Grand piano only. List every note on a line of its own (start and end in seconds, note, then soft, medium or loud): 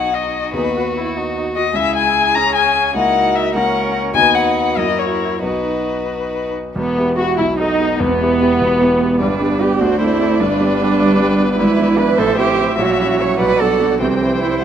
0.00 0.51 B1 soft
0.00 0.51 B3 soft
0.00 0.51 D#4 soft
0.00 0.52 F#4 soft
0.53 1.71 D#2 soft
0.53 1.72 B3 soft
0.53 1.72 D#4 soft
0.53 1.72 F#4 soft
1.73 2.92 C#2 soft
1.73 2.92 C#4 soft
1.73 2.92 E4 soft
2.95 3.53 C#2 soft
2.95 3.54 A#3 soft
2.95 3.54 E4 soft
2.95 3.54 F#4 soft
3.54 4.14 C#2 soft
3.54 4.15 A#3 soft
3.54 4.15 E4 soft
3.54 4.14 F#4 soft
4.14 4.76 D#2 soft
4.14 4.76 B3 soft
4.14 4.76 D#4 soft
4.14 4.76 F#4 soft
4.77 5.41 F#2 soft
4.77 5.41 A#3 soft
4.77 5.42 E4 soft
4.77 5.42 F#4 soft
5.42 6.71 B1 soft
5.42 6.71 B3 soft
5.42 6.71 D#4 soft
5.42 6.71 F#4 soft
6.76 6.96 E1 soft
6.76 6.96 E2 soft
6.97 7.16 B3 soft
6.97 7.16 E4 soft
6.97 7.16 G4 soft
7.17 7.36 B3 soft
7.17 7.36 E4 soft
7.17 7.37 G4 soft
7.39 7.58 B1 soft
7.39 7.58 B2 soft
7.60 7.78 B3 soft
7.60 7.78 F#4 soft
7.60 7.78 A4 soft
7.79 7.98 B3 soft
7.79 7.98 F#4 soft
7.79 7.98 A4 soft
8.00 8.20 E1 soft
8.00 8.20 E2 medium
8.21 8.39 B3 soft
8.21 8.39 E4 soft
8.21 8.39 G4 soft
8.41 8.58 B3 soft
8.41 8.59 E4 soft
8.41 8.59 G4 soft
8.61 8.80 E1 soft
8.61 8.80 E2 soft
8.81 8.99 B3 soft
8.81 8.99 E4 soft
8.81 8.99 G4 soft
9.01 9.19 B3 soft
9.01 9.19 E4 soft
9.01 9.19 G4 soft
9.21 9.40 G1 soft
9.21 9.40 G2 medium
9.41 9.59 B3 soft
9.41 9.59 D4 soft
9.41 9.59 G4 soft
9.62 9.79 B3 soft
9.62 9.79 D4 soft
9.62 9.80 G4 medium
9.81 10.00 D2 medium
9.81 10.00 D3 soft
10.00 10.18 C4 soft
10.00 10.18 D4 soft
10.00 10.19 A4 medium
10.20 10.38 C4 soft
10.20 10.38 D4 soft
10.20 10.39 A4 soft
10.40 10.59 G1 medium
10.40 10.59 G2 medium
10.61 10.78 B3 soft
10.61 10.78 D4 soft
10.61 10.78 G4 soft
10.81 10.98 B3 soft
10.81 10.99 D4 soft
10.81 10.99 G4 medium
10.99 11.18 G1 medium
10.99 11.18 G2 medium
11.20 11.37 B3 soft
11.20 11.37 D4 soft
11.20 11.37 G4 medium
11.39 11.56 B3 soft
11.39 11.57 D4 soft
11.39 11.57 G4 soft
11.59 11.78 G#1 medium
11.59 11.78 G#2 medium
11.79 11.96 B3 soft
11.79 11.96 D4 soft
11.79 11.97 E4 medium
11.98 12.16 B3 soft
11.98 12.17 D4 soft
11.98 12.17 E4 medium
12.19 12.38 A1 medium
12.19 12.38 A2 medium
12.38 12.57 C4 soft
12.38 12.57 E4 medium
12.59 12.77 C4 soft
12.59 12.77 E4 soft
12.79 12.99 A#1 medium
12.79 12.98 A#2 medium
13.00 13.18 C#4 soft
13.00 13.18 E4 soft
13.00 13.18 F#4 soft
13.21 13.39 C#4 soft
13.21 13.39 E4 soft
13.21 13.39 F#4 medium
13.41 13.60 B1 medium
13.41 13.60 B2 soft
13.61 13.78 B3 soft
13.61 13.79 D4 soft
13.61 13.79 F#4 medium
13.80 13.99 B3 soft
13.80 13.99 D4 soft
13.80 13.99 F#4 soft
14.00 14.21 C2 medium
14.00 14.21 C3 soft
14.21 14.40 G3 soft
14.21 14.40 C4 soft
14.21 14.41 E4 soft
14.42 14.61 G3 soft
14.42 14.61 C4 soft
14.42 14.61 E4 soft